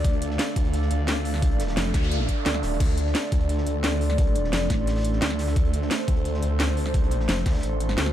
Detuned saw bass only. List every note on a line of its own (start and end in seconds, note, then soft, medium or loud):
0.05 0.38 D2 loud
0.56 0.89 D2 loud
0.91 1.76 D2 loud
2.46 2.62 D2 loud
2.63 2.79 D#1 medium
2.80 3.13 D2 loud
3.32 3.65 D2 loud
3.67 4.51 D2 loud
5.22 5.55 D2 loud
5.56 5.89 D2 loud
6.08 6.41 D2 loud
6.43 7.27 D2 loud
7.46 7.62 D2 loud
7.63 7.96 A1 loud